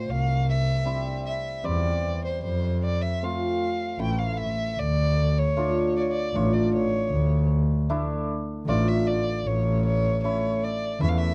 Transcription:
Already playing: violin C5
0.08 double bass C2, violin F5
0.50 violin E5
0.85 hammered dulcimer G3 C4 E4
1.27 violin E5
1.64 double bass E2, hammered dulcimer G3 C4 G4, violin D5
2.25 violin C5
2.43 double bass F2, violin C5
2.85 violin D5
3.02 violin E5
3.23 hammered dulcimer A3 C4 F4, violin F5
3.99 double bass A1, hammered dulcimer A3 C#4 E4, violin G5
4.19 violin F5
4.37 violin E5
4.78 double bass D2, violin D5
5.38 violin C#5
5.57 hammered dulcimer A3 D4 F4
5.97 violin C#5 D5
6.11 violin D5
6.35 double bass A1, hammered dulcimer A3 D4 F4, violin C#5
6.53 violin D5
6.74 violin C#5
7.11 double bass D2
7.89 hammered dulcimer A3 D4 E4
8.67 double bass A1, hammered dulcimer A3 D4 F4, violin D5
8.88 violin E5
9.07 violin D5
9.45 double bass A1, violin C#5
9.85 violin C#5
10.23 hammered dulcimer A3 C#4 E4, violin C#5
10.64 violin D5
11.00 double bass E2, hammered dulcimer A3 C#4 E4, violin E5
11.09 violin F5
11.18 violin E5

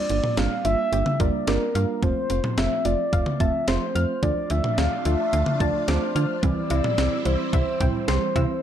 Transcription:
Already playing: soft synth lead D5
0.10 fm bass G1, synth pluck G3 A#3 D4 F4, closed hi-hat
0.24 mid tom
0.37 fm bass G1, synth pluck G3 A#3 D4 F4, synth arpeggio sound D4, soft synth lead F5, snare, closed hi-hat
0.65 fm bass G1, synth pluck G3 A#3 D4 F4, synth arpeggio sound F4, soft synth lead E5, closed hi-hat
0.92 fm bass G1, synth pluck G3 A#3 D4 F4, synth arpeggio sound G4, closed hi-hat
1.06 mid tom
1.20 fm bass G1, synth pluck G3 A#3 D4 F4, synth arpeggio sound A#4, soft synth lead D5, kick, closed hi-hat
1.47 fm bass G1, synth pluck G3 A#3 D4 F4, soft synth lead A#4, synth arpeggio sound D5, snare, closed hi-hat
1.75 fm bass G2, synth pluck G3 A#3 D4 F4, synth arpeggio sound F5, closed hi-hat
2.02 fm bass F1, synth pluck F3 A3 C4 F4, synth arpeggio sound F3, soft synth lead C5, kick, closed hi-hat
2.30 fm bass F1, synth pluck F3 A3 C4 F4, closed hi-hat
2.44 mid tom
2.58 fm bass F1, synth pluck F3 A3 C4 F4, synth arpeggio sound C4, soft synth lead E5, snare, closed hi-hat
2.85 fm bass F1, synth pluck F3 A3 C4 F4, synth arpeggio sound F4, soft synth lead D5, closed hi-hat
3.13 fm bass F1, synth pluck F3 A3 C4 F4, synth arpeggio sound F5, kick, closed hi-hat
3.26 mid tom
3.40 fm bass F1, synth pluck F3 A3 C4 F4, soft synth lead E5, synth arpeggio sound A5, kick, closed hi-hat
3.68 fm bass F1, synth pluck F3 A3 C4 F4, soft synth lead C5, synth arpeggio sound C6, snare, closed hi-hat
3.95 fm bass F2, synth pluck F3 A3 C4 F4, synth arpeggio sound F6, closed hi-hat
4.23 fm bass D2, synth pluck F3 A3 D4 F4, synth arpeggio sound F3, string machine A3 D4 F4, soft synth lead D5, kick, closed hi-hat
4.50 fm bass D2, synth pluck F3 A3 D4 F4, soft synth lead E5, closed hi-hat
4.64 mid tom
4.78 fm bass D2, synth pluck F3 A3 D4 F4, synth arpeggio sound D4, soft synth lead F5, snare, closed hi-hat
5.05 fm bass D2, synth pluck F3 A3 D4 F4, synth arpeggio sound F4, soft synth lead E5, closed hi-hat
5.33 fm bass D2, synth pluck F3 A3 D4 F4, synth arpeggio sound F5, closed hi-hat
5.46 mid tom
5.60 fm bass D2, synth pluck F3 A3 D4 F4, soft synth lead D5, synth arpeggio sound A5, kick, closed hi-hat
5.81 soft synth lead D5
5.88 fm bass D2, synth pluck F3 A3 D4 F4, soft synth lead C5, synth arpeggio sound D6, snare, closed hi-hat
6.15 fm bass D3, synth pluck F3 A3 D4 F4, synth arpeggio sound F6, closed hi-hat
6.43 fm bass C2, synth pluck E3 G3 C4 E4, synth arpeggio sound E3, string machine G3 C4 E4, soft synth lead D5, kick, closed hi-hat
6.70 fm bass C2, synth pluck E3 G3 C4 E4, closed hi-hat, cowbell
6.84 mid tom
6.98 fm bass C2, synth pluck E3 G3 C4 E4, synth arpeggio sound C4, snare, closed hi-hat
7.25 fm bass C2, synth pluck E3 G3 C4 E4, synth arpeggio sound E4, soft synth lead C5, closed hi-hat
7.53 fm bass C2, synth pluck E3 G3 C4 E4, synth arpeggio sound E5, kick, closed hi-hat
7.80 fm bass C2, synth pluck E3 G3 C4 E4, synth arpeggio sound G5, kick, closed hi-hat, mid tom
8.08 fm bass C2, synth pluck E3 G3 C4 G4, soft synth lead C5, synth arpeggio sound C6, snare, closed hi-hat
8.36 fm bass C3, synth pluck E3 G3 C4 E4, synth arpeggio sound E6, kick, closed hi-hat, cowbell

